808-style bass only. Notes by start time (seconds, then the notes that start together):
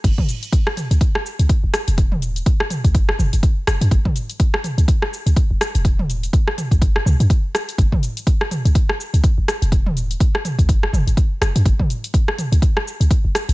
0.04 F#1
0.91 C#2
1.39 C#2
1.64 F#1
1.88 E1
2.84 C#2
2.94 F#1
3.19 F#1
3.33 F#1
3.67 F#1
3.81 F#2
3.91 F#1
4.78 C#2
5.26 C#2
5.51 F#1
5.75 E1
6.71 C#2
6.82 F#1
7.06 C#2
7.20 F#2
7.78 F#1
8.65 C#2
9.14 C#2
9.38 F#1
9.62 E1
10.59 C#2
10.69 F#1
10.93 F#1
11.07 F#1
11.41 F#1
11.56 F#2
11.66 F#1
12.52 C#2
13.00 C#2
13.24 F#1
13.49 E1